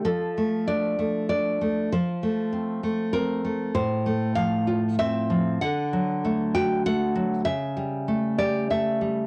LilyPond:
\new Staff \with { instrumentName = "Nylon-string guitar" } { \time 3/4 \key f \major \tempo 4 = 97 << { a'4 d''4 d''4 | c''2 bes'4 | c''4 f''4 e''4 | \key d \major fis''4. g''8 fis''4 |
e''4. d''8 e''8 r8 | } \\ { f8 a8 d'8 a8 d'8 a8 | f8 a8 c'8 a8 c'8 a8 | a,8 a8 f8 f'8 c'8 f8 | d8 fis8 a8 fis'8 a8 fis8 |
cis8 g8 a8 g'8 a8 g8 | } >> }